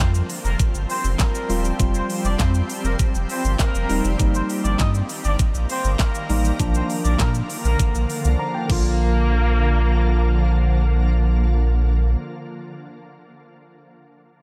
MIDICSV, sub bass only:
0, 0, Header, 1, 2, 480
1, 0, Start_track
1, 0, Key_signature, -2, "major"
1, 0, Tempo, 600000
1, 1437, Time_signature, 4, 2, 24, 8
1, 11538, End_track
2, 0, Start_track
2, 0, Title_t, "Sub bass"
2, 0, Program_c, 0, 38
2, 0, Note_on_c, 0, 41, 110
2, 174, Note_off_c, 0, 41, 0
2, 355, Note_on_c, 0, 29, 94
2, 444, Note_off_c, 0, 29, 0
2, 594, Note_on_c, 0, 31, 95
2, 684, Note_off_c, 0, 31, 0
2, 832, Note_on_c, 0, 29, 96
2, 923, Note_off_c, 0, 29, 0
2, 1194, Note_on_c, 0, 27, 94
2, 1373, Note_off_c, 0, 27, 0
2, 1436, Note_on_c, 0, 29, 110
2, 1614, Note_off_c, 0, 29, 0
2, 1795, Note_on_c, 0, 29, 95
2, 1884, Note_off_c, 0, 29, 0
2, 1917, Note_on_c, 0, 41, 112
2, 2094, Note_off_c, 0, 41, 0
2, 2272, Note_on_c, 0, 29, 95
2, 2363, Note_off_c, 0, 29, 0
2, 2515, Note_on_c, 0, 29, 90
2, 2604, Note_off_c, 0, 29, 0
2, 2755, Note_on_c, 0, 31, 103
2, 2844, Note_off_c, 0, 31, 0
2, 2996, Note_on_c, 0, 29, 102
2, 3085, Note_off_c, 0, 29, 0
2, 3116, Note_on_c, 0, 27, 99
2, 3205, Note_off_c, 0, 27, 0
2, 3234, Note_on_c, 0, 29, 94
2, 3324, Note_off_c, 0, 29, 0
2, 3355, Note_on_c, 0, 31, 115
2, 3533, Note_off_c, 0, 31, 0
2, 3715, Note_on_c, 0, 31, 101
2, 3804, Note_off_c, 0, 31, 0
2, 3838, Note_on_c, 0, 43, 110
2, 4015, Note_off_c, 0, 43, 0
2, 4197, Note_on_c, 0, 31, 93
2, 4286, Note_off_c, 0, 31, 0
2, 4436, Note_on_c, 0, 34, 84
2, 4525, Note_off_c, 0, 34, 0
2, 4674, Note_on_c, 0, 31, 98
2, 4764, Note_off_c, 0, 31, 0
2, 5035, Note_on_c, 0, 33, 107
2, 5213, Note_off_c, 0, 33, 0
2, 5277, Note_on_c, 0, 34, 110
2, 5454, Note_off_c, 0, 34, 0
2, 5636, Note_on_c, 0, 34, 99
2, 5725, Note_off_c, 0, 34, 0
2, 5758, Note_on_c, 0, 46, 107
2, 5935, Note_off_c, 0, 46, 0
2, 6116, Note_on_c, 0, 34, 90
2, 6205, Note_off_c, 0, 34, 0
2, 6355, Note_on_c, 0, 34, 93
2, 6444, Note_off_c, 0, 34, 0
2, 6597, Note_on_c, 0, 36, 100
2, 6686, Note_off_c, 0, 36, 0
2, 6957, Note_on_c, 0, 34, 104
2, 9725, Note_off_c, 0, 34, 0
2, 11538, End_track
0, 0, End_of_file